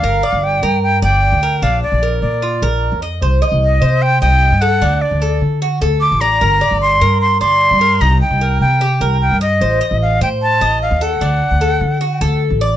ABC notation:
X:1
M:4/4
L:1/16
Q:1/4=150
K:Gm
V:1 name="Flute"
f4 g4 g2 g6 | f2 d4 d8 z2 | z4 e4 g2 g4 ^f2- | ^f2 d4 z6 d'2 b2- |
b4 c'4 c'2 c'6 | b2 g4 g6 g2 e2- | e4 f2 g2 a4 f2 ^f2- | ^f12 z4 |]
V:2 name="Cuban tres"
B2 d4 B4 d4 B2 | D4 B4 F2 B4 e2 | c2 e4 c4 e4 A2 | D4 A4 ^F2 A4 d2 |
B2 d4 B4 d4 B2 | E4 B4 G2 B4 e2 | c2 e4 c4 e4 A2 | D4 A4 ^F2 A4 d2 |]
V:3 name="Upright bass" clef=bass
G,,,2 z G,,,3 G,,4 G,,,3 D,,3 | B,,,2 z B,,,3 B,,4 B,,,3 F,,3 | C,,2 z C,,3 C,4 C,,3 G,,3 | D,,2 z D,,3 D,4 D,,3 A,,,3 |
G,,,2 z G,,,3 G,,4 G,,,3 G,,3 | C,,2 z C,,3 C,4 C,,3 G,,3 | A,,,2 z A,,,3 A,,4 A,,,3 E,,3 | D,,2 z D,,3 D,4 D,,3 A,,,3 |]